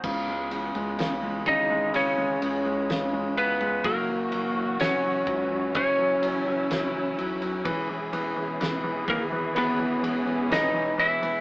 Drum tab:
CC |x---------------|----------------|----------------|
RD |--xxx-x-x-x-x-xx|x-x-x-x-x-x-x-xx|x-x-x-x-x-x-x-xx|
SD |----o-------o---|----o-------o---|----o-------o---|
BD |o-----o---------|o-----o-o-------|o-----o---------|